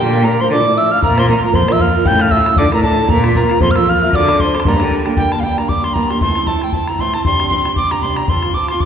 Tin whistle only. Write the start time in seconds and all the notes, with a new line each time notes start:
0.00 G5
0.25 A#5
0.40 C6
0.51 D6
0.78 E6
0.91 F6
1.03 A#5
1.19 C6
1.29 A#5
1.46 A#5
1.55 C6
1.72 E6
1.81 F6
2.07 G6
2.22 F6
2.31 E6
2.58 D6
2.74 A#5
2.83 A5
3.10 A#5
3.37 A#5
3.62 C6
3.71 F6
3.76 E6
3.89 F6
4.15 D6
4.40 C6
4.67 A#5
5.17 G5
5.32 A5
5.40 F5 G5
5.58 A#5
5.69 D6
5.84 C6
5.94 A#5
6.10 C6
6.22 C6
6.47 A5
6.64 G5
6.73 A5
6.88 A#5
7.00 C6
7.14 A5
7.25 C6
7.49 C6
7.76 D6
7.91 A#5
8.03 C6
8.17 A#5
8.29 C6
8.54 D6
8.70 C6
8.81 D6